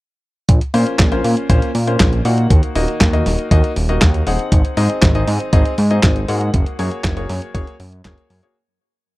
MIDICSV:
0, 0, Header, 1, 4, 480
1, 0, Start_track
1, 0, Tempo, 504202
1, 464, Time_signature, 4, 2, 24, 8
1, 8731, End_track
2, 0, Start_track
2, 0, Title_t, "Grand piano"
2, 0, Program_c, 0, 0
2, 704, Note_on_c, 0, 58, 84
2, 704, Note_on_c, 0, 61, 78
2, 704, Note_on_c, 0, 65, 74
2, 704, Note_on_c, 0, 72, 93
2, 1035, Note_off_c, 0, 58, 0
2, 1035, Note_off_c, 0, 61, 0
2, 1035, Note_off_c, 0, 65, 0
2, 1035, Note_off_c, 0, 72, 0
2, 1064, Note_on_c, 0, 65, 72
2, 1064, Note_on_c, 0, 72, 86
2, 1065, Note_on_c, 0, 58, 79
2, 1065, Note_on_c, 0, 61, 70
2, 1395, Note_off_c, 0, 58, 0
2, 1395, Note_off_c, 0, 61, 0
2, 1395, Note_off_c, 0, 65, 0
2, 1395, Note_off_c, 0, 72, 0
2, 1425, Note_on_c, 0, 58, 92
2, 1425, Note_on_c, 0, 61, 83
2, 1425, Note_on_c, 0, 65, 82
2, 1425, Note_on_c, 0, 72, 102
2, 1610, Note_off_c, 0, 58, 0
2, 1610, Note_off_c, 0, 61, 0
2, 1610, Note_off_c, 0, 65, 0
2, 1610, Note_off_c, 0, 72, 0
2, 1783, Note_on_c, 0, 58, 75
2, 1784, Note_on_c, 0, 61, 70
2, 1784, Note_on_c, 0, 65, 70
2, 1784, Note_on_c, 0, 72, 84
2, 2115, Note_off_c, 0, 58, 0
2, 2115, Note_off_c, 0, 61, 0
2, 2115, Note_off_c, 0, 65, 0
2, 2115, Note_off_c, 0, 72, 0
2, 2144, Note_on_c, 0, 58, 73
2, 2144, Note_on_c, 0, 63, 69
2, 2144, Note_on_c, 0, 78, 80
2, 2145, Note_on_c, 0, 66, 66
2, 2595, Note_off_c, 0, 58, 0
2, 2595, Note_off_c, 0, 63, 0
2, 2595, Note_off_c, 0, 66, 0
2, 2595, Note_off_c, 0, 78, 0
2, 2622, Note_on_c, 0, 63, 80
2, 2622, Note_on_c, 0, 75, 93
2, 2623, Note_on_c, 0, 58, 85
2, 2623, Note_on_c, 0, 66, 78
2, 2954, Note_off_c, 0, 63, 0
2, 2954, Note_off_c, 0, 66, 0
2, 2954, Note_off_c, 0, 75, 0
2, 2955, Note_off_c, 0, 58, 0
2, 2982, Note_on_c, 0, 58, 79
2, 2983, Note_on_c, 0, 63, 73
2, 2983, Note_on_c, 0, 66, 75
2, 2983, Note_on_c, 0, 75, 88
2, 3314, Note_off_c, 0, 58, 0
2, 3314, Note_off_c, 0, 66, 0
2, 3314, Note_off_c, 0, 75, 0
2, 3315, Note_off_c, 0, 63, 0
2, 3342, Note_on_c, 0, 58, 89
2, 3343, Note_on_c, 0, 63, 83
2, 3343, Note_on_c, 0, 66, 84
2, 3343, Note_on_c, 0, 75, 101
2, 3529, Note_off_c, 0, 58, 0
2, 3529, Note_off_c, 0, 63, 0
2, 3529, Note_off_c, 0, 66, 0
2, 3529, Note_off_c, 0, 75, 0
2, 3703, Note_on_c, 0, 63, 74
2, 3704, Note_on_c, 0, 58, 80
2, 3704, Note_on_c, 0, 66, 70
2, 3704, Note_on_c, 0, 75, 85
2, 4035, Note_off_c, 0, 58, 0
2, 4035, Note_off_c, 0, 63, 0
2, 4035, Note_off_c, 0, 66, 0
2, 4035, Note_off_c, 0, 75, 0
2, 4063, Note_on_c, 0, 68, 67
2, 4064, Note_on_c, 0, 60, 76
2, 4064, Note_on_c, 0, 63, 69
2, 4064, Note_on_c, 0, 78, 82
2, 4515, Note_off_c, 0, 60, 0
2, 4515, Note_off_c, 0, 63, 0
2, 4515, Note_off_c, 0, 68, 0
2, 4515, Note_off_c, 0, 78, 0
2, 4542, Note_on_c, 0, 63, 78
2, 4542, Note_on_c, 0, 68, 79
2, 4542, Note_on_c, 0, 75, 96
2, 4543, Note_on_c, 0, 60, 85
2, 4874, Note_off_c, 0, 63, 0
2, 4874, Note_off_c, 0, 68, 0
2, 4874, Note_off_c, 0, 75, 0
2, 4875, Note_off_c, 0, 60, 0
2, 4904, Note_on_c, 0, 60, 81
2, 4904, Note_on_c, 0, 63, 73
2, 4904, Note_on_c, 0, 68, 71
2, 4904, Note_on_c, 0, 75, 88
2, 5235, Note_off_c, 0, 60, 0
2, 5235, Note_off_c, 0, 63, 0
2, 5235, Note_off_c, 0, 68, 0
2, 5235, Note_off_c, 0, 75, 0
2, 5264, Note_on_c, 0, 60, 95
2, 5264, Note_on_c, 0, 63, 85
2, 5264, Note_on_c, 0, 75, 103
2, 5265, Note_on_c, 0, 68, 82
2, 5450, Note_off_c, 0, 60, 0
2, 5450, Note_off_c, 0, 63, 0
2, 5450, Note_off_c, 0, 68, 0
2, 5450, Note_off_c, 0, 75, 0
2, 5623, Note_on_c, 0, 68, 71
2, 5623, Note_on_c, 0, 75, 85
2, 5624, Note_on_c, 0, 60, 80
2, 5624, Note_on_c, 0, 63, 73
2, 5955, Note_off_c, 0, 60, 0
2, 5955, Note_off_c, 0, 63, 0
2, 5955, Note_off_c, 0, 68, 0
2, 5955, Note_off_c, 0, 75, 0
2, 5983, Note_on_c, 0, 58, 74
2, 5983, Note_on_c, 0, 66, 68
2, 5983, Note_on_c, 0, 78, 83
2, 5984, Note_on_c, 0, 68, 69
2, 6435, Note_off_c, 0, 58, 0
2, 6435, Note_off_c, 0, 66, 0
2, 6435, Note_off_c, 0, 68, 0
2, 6435, Note_off_c, 0, 78, 0
2, 6463, Note_on_c, 0, 58, 84
2, 6463, Note_on_c, 0, 68, 79
2, 6464, Note_on_c, 0, 66, 78
2, 6464, Note_on_c, 0, 73, 93
2, 6795, Note_off_c, 0, 58, 0
2, 6795, Note_off_c, 0, 66, 0
2, 6795, Note_off_c, 0, 68, 0
2, 6795, Note_off_c, 0, 73, 0
2, 6822, Note_on_c, 0, 58, 76
2, 6823, Note_on_c, 0, 66, 70
2, 6823, Note_on_c, 0, 68, 73
2, 6823, Note_on_c, 0, 73, 88
2, 7154, Note_off_c, 0, 58, 0
2, 7155, Note_off_c, 0, 66, 0
2, 7155, Note_off_c, 0, 68, 0
2, 7155, Note_off_c, 0, 73, 0
2, 7182, Note_on_c, 0, 58, 92
2, 7182, Note_on_c, 0, 66, 83
2, 7182, Note_on_c, 0, 68, 86
2, 7182, Note_on_c, 0, 73, 104
2, 7368, Note_off_c, 0, 66, 0
2, 7369, Note_off_c, 0, 58, 0
2, 7369, Note_off_c, 0, 68, 0
2, 7369, Note_off_c, 0, 73, 0
2, 7664, Note_on_c, 0, 58, 84
2, 7664, Note_on_c, 0, 66, 74
2, 7664, Note_on_c, 0, 68, 79
2, 7664, Note_on_c, 0, 73, 90
2, 7995, Note_off_c, 0, 58, 0
2, 7995, Note_off_c, 0, 66, 0
2, 7995, Note_off_c, 0, 68, 0
2, 7995, Note_off_c, 0, 73, 0
2, 8025, Note_on_c, 0, 66, 68
2, 8025, Note_on_c, 0, 68, 71
2, 8025, Note_on_c, 0, 73, 86
2, 8026, Note_on_c, 0, 58, 80
2, 8130, Note_off_c, 0, 58, 0
2, 8130, Note_off_c, 0, 66, 0
2, 8130, Note_off_c, 0, 68, 0
2, 8130, Note_off_c, 0, 73, 0
2, 8731, End_track
3, 0, Start_track
3, 0, Title_t, "Analog synth bass"
3, 0, Program_c, 1, 38
3, 465, Note_on_c, 1, 34, 101
3, 569, Note_off_c, 1, 34, 0
3, 703, Note_on_c, 1, 46, 103
3, 808, Note_off_c, 1, 46, 0
3, 944, Note_on_c, 1, 34, 92
3, 1154, Note_off_c, 1, 34, 0
3, 1184, Note_on_c, 1, 46, 100
3, 1289, Note_off_c, 1, 46, 0
3, 1424, Note_on_c, 1, 34, 109
3, 1529, Note_off_c, 1, 34, 0
3, 1663, Note_on_c, 1, 46, 92
3, 1873, Note_off_c, 1, 46, 0
3, 1904, Note_on_c, 1, 34, 83
3, 2114, Note_off_c, 1, 34, 0
3, 2142, Note_on_c, 1, 46, 104
3, 2353, Note_off_c, 1, 46, 0
3, 2384, Note_on_c, 1, 39, 98
3, 2489, Note_off_c, 1, 39, 0
3, 2621, Note_on_c, 1, 27, 101
3, 2727, Note_off_c, 1, 27, 0
3, 2863, Note_on_c, 1, 39, 94
3, 3073, Note_off_c, 1, 39, 0
3, 3102, Note_on_c, 1, 27, 99
3, 3208, Note_off_c, 1, 27, 0
3, 3344, Note_on_c, 1, 39, 106
3, 3449, Note_off_c, 1, 39, 0
3, 3582, Note_on_c, 1, 27, 91
3, 3793, Note_off_c, 1, 27, 0
3, 3823, Note_on_c, 1, 39, 92
3, 4033, Note_off_c, 1, 39, 0
3, 4063, Note_on_c, 1, 27, 86
3, 4169, Note_off_c, 1, 27, 0
3, 4303, Note_on_c, 1, 32, 102
3, 4408, Note_off_c, 1, 32, 0
3, 4542, Note_on_c, 1, 44, 101
3, 4648, Note_off_c, 1, 44, 0
3, 4783, Note_on_c, 1, 32, 96
3, 4993, Note_off_c, 1, 32, 0
3, 5023, Note_on_c, 1, 44, 100
3, 5128, Note_off_c, 1, 44, 0
3, 5263, Note_on_c, 1, 32, 106
3, 5368, Note_off_c, 1, 32, 0
3, 5504, Note_on_c, 1, 44, 94
3, 5714, Note_off_c, 1, 44, 0
3, 5743, Note_on_c, 1, 32, 85
3, 5954, Note_off_c, 1, 32, 0
3, 5984, Note_on_c, 1, 44, 108
3, 6194, Note_off_c, 1, 44, 0
3, 6223, Note_on_c, 1, 30, 104
3, 6329, Note_off_c, 1, 30, 0
3, 6466, Note_on_c, 1, 42, 105
3, 6570, Note_off_c, 1, 42, 0
3, 6704, Note_on_c, 1, 30, 90
3, 6914, Note_off_c, 1, 30, 0
3, 6944, Note_on_c, 1, 42, 100
3, 7049, Note_off_c, 1, 42, 0
3, 7184, Note_on_c, 1, 30, 85
3, 7289, Note_off_c, 1, 30, 0
3, 7423, Note_on_c, 1, 42, 100
3, 7634, Note_off_c, 1, 42, 0
3, 7664, Note_on_c, 1, 30, 98
3, 7769, Note_off_c, 1, 30, 0
3, 7904, Note_on_c, 1, 42, 100
3, 8009, Note_off_c, 1, 42, 0
3, 8731, End_track
4, 0, Start_track
4, 0, Title_t, "Drums"
4, 464, Note_on_c, 9, 36, 119
4, 464, Note_on_c, 9, 42, 97
4, 559, Note_off_c, 9, 36, 0
4, 559, Note_off_c, 9, 42, 0
4, 584, Note_on_c, 9, 42, 45
4, 679, Note_off_c, 9, 42, 0
4, 704, Note_on_c, 9, 46, 106
4, 799, Note_off_c, 9, 46, 0
4, 825, Note_on_c, 9, 42, 41
4, 920, Note_off_c, 9, 42, 0
4, 943, Note_on_c, 9, 38, 123
4, 943, Note_on_c, 9, 39, 104
4, 943, Note_on_c, 9, 42, 97
4, 944, Note_on_c, 9, 36, 121
4, 1038, Note_off_c, 9, 38, 0
4, 1038, Note_off_c, 9, 39, 0
4, 1038, Note_off_c, 9, 42, 0
4, 1039, Note_off_c, 9, 36, 0
4, 1064, Note_on_c, 9, 42, 42
4, 1159, Note_off_c, 9, 42, 0
4, 1184, Note_on_c, 9, 46, 108
4, 1280, Note_off_c, 9, 46, 0
4, 1305, Note_on_c, 9, 42, 42
4, 1400, Note_off_c, 9, 42, 0
4, 1424, Note_on_c, 9, 36, 120
4, 1424, Note_on_c, 9, 42, 100
4, 1519, Note_off_c, 9, 36, 0
4, 1519, Note_off_c, 9, 42, 0
4, 1545, Note_on_c, 9, 42, 40
4, 1640, Note_off_c, 9, 42, 0
4, 1664, Note_on_c, 9, 46, 105
4, 1760, Note_off_c, 9, 46, 0
4, 1785, Note_on_c, 9, 42, 43
4, 1880, Note_off_c, 9, 42, 0
4, 1904, Note_on_c, 9, 36, 119
4, 1904, Note_on_c, 9, 38, 127
4, 1904, Note_on_c, 9, 39, 111
4, 1904, Note_on_c, 9, 42, 105
4, 1999, Note_off_c, 9, 36, 0
4, 1999, Note_off_c, 9, 38, 0
4, 1999, Note_off_c, 9, 39, 0
4, 1999, Note_off_c, 9, 42, 0
4, 2025, Note_on_c, 9, 42, 39
4, 2120, Note_off_c, 9, 42, 0
4, 2142, Note_on_c, 9, 46, 105
4, 2237, Note_off_c, 9, 46, 0
4, 2264, Note_on_c, 9, 42, 41
4, 2359, Note_off_c, 9, 42, 0
4, 2384, Note_on_c, 9, 36, 122
4, 2384, Note_on_c, 9, 42, 93
4, 2479, Note_off_c, 9, 36, 0
4, 2479, Note_off_c, 9, 42, 0
4, 2503, Note_on_c, 9, 42, 42
4, 2598, Note_off_c, 9, 42, 0
4, 2623, Note_on_c, 9, 46, 103
4, 2718, Note_off_c, 9, 46, 0
4, 2744, Note_on_c, 9, 42, 41
4, 2839, Note_off_c, 9, 42, 0
4, 2863, Note_on_c, 9, 36, 124
4, 2864, Note_on_c, 9, 38, 123
4, 2864, Note_on_c, 9, 39, 111
4, 2864, Note_on_c, 9, 42, 96
4, 2959, Note_off_c, 9, 36, 0
4, 2959, Note_off_c, 9, 38, 0
4, 2959, Note_off_c, 9, 39, 0
4, 2959, Note_off_c, 9, 42, 0
4, 2984, Note_on_c, 9, 42, 41
4, 3079, Note_off_c, 9, 42, 0
4, 3104, Note_on_c, 9, 38, 39
4, 3104, Note_on_c, 9, 46, 104
4, 3199, Note_off_c, 9, 38, 0
4, 3199, Note_off_c, 9, 46, 0
4, 3224, Note_on_c, 9, 42, 39
4, 3320, Note_off_c, 9, 42, 0
4, 3343, Note_on_c, 9, 36, 121
4, 3344, Note_on_c, 9, 42, 95
4, 3439, Note_off_c, 9, 36, 0
4, 3439, Note_off_c, 9, 42, 0
4, 3464, Note_on_c, 9, 42, 38
4, 3560, Note_off_c, 9, 42, 0
4, 3583, Note_on_c, 9, 46, 100
4, 3678, Note_off_c, 9, 46, 0
4, 3704, Note_on_c, 9, 42, 42
4, 3799, Note_off_c, 9, 42, 0
4, 3823, Note_on_c, 9, 36, 125
4, 3823, Note_on_c, 9, 38, 127
4, 3823, Note_on_c, 9, 39, 111
4, 3823, Note_on_c, 9, 42, 102
4, 3918, Note_off_c, 9, 36, 0
4, 3918, Note_off_c, 9, 38, 0
4, 3918, Note_off_c, 9, 39, 0
4, 3918, Note_off_c, 9, 42, 0
4, 3944, Note_on_c, 9, 42, 38
4, 4039, Note_off_c, 9, 42, 0
4, 4062, Note_on_c, 9, 46, 101
4, 4157, Note_off_c, 9, 46, 0
4, 4182, Note_on_c, 9, 42, 41
4, 4277, Note_off_c, 9, 42, 0
4, 4302, Note_on_c, 9, 42, 91
4, 4303, Note_on_c, 9, 36, 121
4, 4397, Note_off_c, 9, 42, 0
4, 4398, Note_off_c, 9, 36, 0
4, 4423, Note_on_c, 9, 42, 41
4, 4518, Note_off_c, 9, 42, 0
4, 4542, Note_on_c, 9, 46, 108
4, 4637, Note_off_c, 9, 46, 0
4, 4662, Note_on_c, 9, 42, 38
4, 4757, Note_off_c, 9, 42, 0
4, 4781, Note_on_c, 9, 38, 127
4, 4781, Note_on_c, 9, 39, 105
4, 4781, Note_on_c, 9, 42, 94
4, 4783, Note_on_c, 9, 36, 126
4, 4877, Note_off_c, 9, 38, 0
4, 4877, Note_off_c, 9, 39, 0
4, 4877, Note_off_c, 9, 42, 0
4, 4878, Note_off_c, 9, 36, 0
4, 4902, Note_on_c, 9, 42, 39
4, 4997, Note_off_c, 9, 42, 0
4, 5022, Note_on_c, 9, 46, 101
4, 5117, Note_off_c, 9, 46, 0
4, 5143, Note_on_c, 9, 42, 39
4, 5238, Note_off_c, 9, 42, 0
4, 5262, Note_on_c, 9, 42, 94
4, 5263, Note_on_c, 9, 36, 126
4, 5358, Note_off_c, 9, 42, 0
4, 5359, Note_off_c, 9, 36, 0
4, 5383, Note_on_c, 9, 42, 38
4, 5478, Note_off_c, 9, 42, 0
4, 5502, Note_on_c, 9, 46, 102
4, 5597, Note_off_c, 9, 46, 0
4, 5623, Note_on_c, 9, 42, 41
4, 5718, Note_off_c, 9, 42, 0
4, 5742, Note_on_c, 9, 38, 127
4, 5742, Note_on_c, 9, 39, 111
4, 5742, Note_on_c, 9, 42, 94
4, 5743, Note_on_c, 9, 36, 127
4, 5837, Note_off_c, 9, 38, 0
4, 5837, Note_off_c, 9, 39, 0
4, 5837, Note_off_c, 9, 42, 0
4, 5839, Note_off_c, 9, 36, 0
4, 5862, Note_on_c, 9, 42, 38
4, 5957, Note_off_c, 9, 42, 0
4, 5983, Note_on_c, 9, 46, 101
4, 6078, Note_off_c, 9, 46, 0
4, 6103, Note_on_c, 9, 42, 38
4, 6199, Note_off_c, 9, 42, 0
4, 6223, Note_on_c, 9, 42, 90
4, 6224, Note_on_c, 9, 36, 120
4, 6319, Note_off_c, 9, 36, 0
4, 6319, Note_off_c, 9, 42, 0
4, 6344, Note_on_c, 9, 42, 40
4, 6439, Note_off_c, 9, 42, 0
4, 6463, Note_on_c, 9, 46, 103
4, 6559, Note_off_c, 9, 46, 0
4, 6583, Note_on_c, 9, 42, 38
4, 6678, Note_off_c, 9, 42, 0
4, 6703, Note_on_c, 9, 38, 125
4, 6703, Note_on_c, 9, 39, 101
4, 6703, Note_on_c, 9, 42, 92
4, 6704, Note_on_c, 9, 36, 119
4, 6798, Note_off_c, 9, 38, 0
4, 6798, Note_off_c, 9, 39, 0
4, 6798, Note_off_c, 9, 42, 0
4, 6799, Note_off_c, 9, 36, 0
4, 6823, Note_on_c, 9, 42, 38
4, 6919, Note_off_c, 9, 42, 0
4, 6945, Note_on_c, 9, 38, 38
4, 6945, Note_on_c, 9, 46, 106
4, 7040, Note_off_c, 9, 38, 0
4, 7040, Note_off_c, 9, 46, 0
4, 7064, Note_on_c, 9, 42, 38
4, 7160, Note_off_c, 9, 42, 0
4, 7184, Note_on_c, 9, 36, 127
4, 7184, Note_on_c, 9, 42, 90
4, 7279, Note_off_c, 9, 36, 0
4, 7280, Note_off_c, 9, 42, 0
4, 7306, Note_on_c, 9, 42, 38
4, 7401, Note_off_c, 9, 42, 0
4, 7423, Note_on_c, 9, 46, 106
4, 7519, Note_off_c, 9, 46, 0
4, 7544, Note_on_c, 9, 42, 38
4, 7640, Note_off_c, 9, 42, 0
4, 7664, Note_on_c, 9, 36, 124
4, 7664, Note_on_c, 9, 38, 127
4, 7664, Note_on_c, 9, 39, 107
4, 7664, Note_on_c, 9, 42, 94
4, 7759, Note_off_c, 9, 36, 0
4, 7759, Note_off_c, 9, 38, 0
4, 7759, Note_off_c, 9, 39, 0
4, 7759, Note_off_c, 9, 42, 0
4, 7784, Note_on_c, 9, 42, 38
4, 7879, Note_off_c, 9, 42, 0
4, 7903, Note_on_c, 9, 46, 102
4, 7999, Note_off_c, 9, 46, 0
4, 8025, Note_on_c, 9, 42, 38
4, 8120, Note_off_c, 9, 42, 0
4, 8731, End_track
0, 0, End_of_file